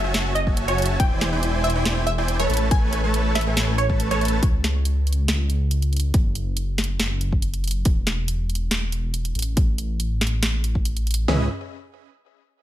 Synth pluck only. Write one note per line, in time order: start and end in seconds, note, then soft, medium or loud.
0.00 0.24 E5 medium
0.35 0.59 D#5 medium
0.68 0.91 C#5 medium
1.00 1.23 G5 loud
1.64 1.96 E5 loud
2.07 2.30 E5 medium
2.39 2.63 C#5 medium
2.71 2.95 G#5 loud
3.35 3.67 E5 loud
3.78 4.02 C#5 medium
4.11 4.34 C#5 medium